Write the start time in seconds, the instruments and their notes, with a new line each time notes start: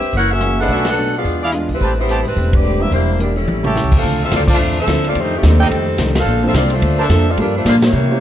Already playing: saxophone section C4 G4 B4 E5
0.01 muted upright bass stroke, open hi-hat
0.13 upright bass F#1, hollow-body jazz guitar F#2 E3 A#3 C#4, saxophone section A#4, kick, open hi-hat
0.17 saxophone section E4 C#5 F#5
0.32 saxophone section C#4 F#4 A#4 E5
0.40 hollow-body jazz guitar F#2 E3 A#3 C#4, grand piano A#3 C#4 E4 G#4, cross-stick, closed hi-hat
0.57 saxophone section C4 E4 G#4, trumpet section D4 A4 B4 F#5
0.61 saxophone section D#5
0.67 upright bass B1, hollow-body jazz guitar B2 F#3 A3 D4, grand piano A3 C#4 D4 F#4, kick, open hi-hat
0.72 saxophone section C#4 F#4 A4 E5
0.85 snare, ride
0.89 saxophone section D4 A4 B4 F#5
0.97 hollow-body jazz guitar B2 F#3 A3 D4
1.17 saxophone section B3 F4 G#4 D5
1.24 upright bass E2, hollow-body jazz guitar E3 G#3 D4 F4, kick, open hi-hat
1.42 trumpet section E4 G#4 D5 F5
1.52 hollow-body jazz guitar E3 G#3 D4 F4, grand piano G#3 B3 D4 F4, cross-stick, closed hi-hat
1.68 upright bass B1, open hi-hat
1.73 saxophone section G3 C4 E4 B4
1.80 upright bass A1, hollow-body jazz guitar A3 C4 G4 B4, trumpet section G4 B4 C5 A5, kick, open hi-hat
2.00 saxophone section G3 B3 E4 C5
2.08 hollow-body jazz guitar A3 C4 G4 B4, trumpet section G4 B4 C5 A5, closed hi-hat
2.25 upright bass G#1, saxophone section G3 C4 E4 B4, open hi-hat
2.35 upright bass E1, hollow-body jazz guitar A3 C4 G4 B4, kick, open hi-hat
2.53 saxophone section C4 G4 B4 D5, kick, ride
2.64 hollow-body jazz guitar A3 C4 G4 B4
2.80 grand piano G3 A#3 D4 E4, saxophone section C4 G4 B4 E5
2.90 upright bass E1, hollow-body jazz guitar E3 A#3 D4 G4, saxophone section A#3 E4 G4 C5, kick, open hi-hat
3.19 hollow-body jazz guitar E3 A#3 D4 G4, saxophone section G3 D4 E4 A#4, closed hi-hat
3.36 saxophone section G3 C#4 E4 A4, open hi-hat
3.45 upright bass A1, hollow-body jazz guitar A2 G3 C#4 E4, high tom
3.63 grand piano G3 A3 C#4 E4, trumpet section G4 C#5 E5 A5, mid tom
3.74 hollow-body jazz guitar A2 G3 C#4 E4, snare
3.83 upright bass C#2
3.92 upright bass D#2, kick, crash
3.96 saxophone section D4 A4 C5 F5
4.02 upright bass D2, hollow-body jazz guitar D3 A3 C4 F4, kick
4.24 saxophone section C4 F4 A4 E5
4.31 upright bass F2, hollow-body jazz guitar D3 A3 C4 F4, kick, snare, hi-hat pedal, ride
4.35 upright bass D2, saxophone section C4 F4 A4 D5
4.47 upright bass C2, trumpet section F4 C5 D5 A5, kick, crash
4.53 saxophone section A3 D4 F4 C5
4.57 upright bass E2, hollow-body jazz guitar D3 A3
4.61 hollow-body jazz guitar C4 F4
4.80 saxophone section D4 A4 C5 E5
4.86 upright bass D2, hollow-body jazz guitar D3 A3 C4 F4, grand piano F3 A3 C4 D4 E4, kick, snare, hi-hat pedal, ride
5.04 ride
5.08 saxophone section C4 F4 A4 D5
5.14 hollow-body jazz guitar F2 D#3 A3 D4, upright bass F2, kick, ride
5.19 saxophone section A3 D#4 G4 C5
5.36 saxophone section D#3 A3 C4 G4
5.43 upright bass D#2, hollow-body jazz guitar F2 D#3 A3 D4, grand piano D#3 A3 C4 D4 G4, saxophone section G3 A4, kick, snare, hi-hat pedal, ride
5.47 saxophone section C4 D#4
5.58 trumpet section D#4 A4 D5 G5, saxophone section A4
5.63 saxophone section G3 C4 D#4
5.70 hollow-body jazz guitar F2 D#3 A3 D4, upright bass F2, kick, ride
5.98 upright bass C2, hollow-body jazz guitar F2 D#3 A3 D4, kick, snare, hi-hat pedal, ride
6.15 saxophone section D4 A4 C5 F5, snare, ride
6.26 upright bass A#1, hollow-body jazz guitar A#3 D4 A4 C5
6.43 grand piano F3 A#3 C4 D4 A4
6.47 saxophone section C4 F4 A4 E5
6.53 upright bass C2, hollow-body jazz guitar A#3 D4 A4 C5, saxophone section C4 F4 A4 D5, kick, snare, hi-hat pedal, ride
6.70 saxophone section A3 D4 F4 C5, ride
6.81 upright bass D2, hollow-body jazz guitar A#3 D4 A4 C5, kick, ride
6.98 trumpet section D4 A#4 C5 A5, saxophone section D4 A4 C5 E5
7.09 upright bass F2, grand piano F3 A#3 C4 D4 A4, hollow-body jazz guitar A#3 D4 A4 C5, kick, snare, hi-hat pedal, ride
7.30 saxophone section C4 F4 A4 D5
7.37 upright bass G2, hollow-body jazz guitar G2 F3, grand piano G3 A#3 D4 F4 A4, saxophone section F4, kick, ride
7.41 saxophone section G3 D4 A#4, hollow-body jazz guitar A#3 D4
7.57 saxophone section A3 D4 F4 C5
7.65 hollow-body jazz guitar G2 F3 A#3, upright bass A#2, saxophone section A#3 F4 G4 D5, kick, snare, hi-hat pedal, ride
7.69 hollow-body jazz guitar D4
7.82 saxophone section A#3 E4 G4 C#5, snare, ride
7.93 upright bass C3, hollow-body jazz guitar C3 E3 A#3
7.97 hollow-body jazz guitar C#4
8.10 grand piano A#3 C4 C#4 E4 G4